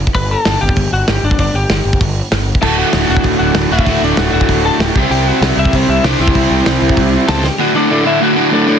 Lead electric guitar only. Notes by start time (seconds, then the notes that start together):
0.15 B4 B5
0.31 A4 A5
0.61 G4 G5
0.93 F#4 F#5
1.08 G4 G5
1.24 D4 D5
1.40 D4 D5
1.55 G4 G5
2.63 A4 A5
2.78 F#4 F#5
3.10 F#4 F#5
3.39 F#4 F#5
3.72 E4 E5
4.04 D4 D5
4.19 F#4 F#5
4.33 F#4 F#5
4.65 A4 A5
4.80 G4 G5
5.11 G4 G5
5.27 F#4 F#5
5.59 E4 E5
5.75 C4 C5
5.89 E4 E5
6.04 D4 D5
6.21 E4 E5
7.28 A4 A5
7.44 G4 G5
7.60 F#4 F#5
7.76 D4 D5
8.07 E4 E5
8.23 F#4 F#5
8.54 D4 D5